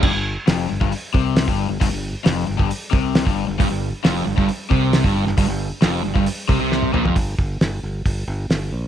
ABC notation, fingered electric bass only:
X:1
M:4/4
L:1/16
Q:1/4=135
K:Gm
V:1 name="Fingered electric bass" clef=bass
G,,, G,,,2 z F,,,2 G,,, G,,, z2 C,,3 G,,,2 G,,, | G,,, G,,,2 z F,,,2 G,,, G,,, z2 C,,3 G,,,2 G,,, | G,,, G,,,2 z F,,,2 G,,, G,,, z2 C,,3 G,,,2 G,,, | G,,, G,,,2 z F,,,2 G,,, G,,, z2 C,, C,,3 B,,, F,,, |
G,,,2 G,,,2 G,,,2 G,,,2 G,,,2 G,,,2 G,,,2 B,,,2 |]